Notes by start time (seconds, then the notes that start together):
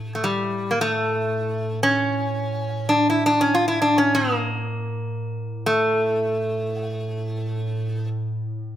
Already playing: A3
0.05 A2
0.15 A3
0.24 G3
0.71 A#3
0.81 A3
1.83 C#4
2.89 D4
3.10 E4
3.26 D4
3.41 C#4
3.55 F4
3.68 E4
3.82 D4
3.98 C#4
4.15 A#3
5.66 A3